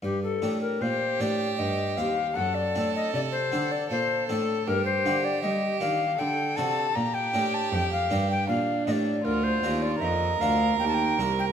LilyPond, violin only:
\new Staff \with { instrumentName = "Violin" } { \time 3/4 \key g \minor \tempo 4 = 78 r4 g'2 | a'2 a'4 | g'2 a'4 | g'2 d'4 |
\key bes \major f'4 bes'2 | }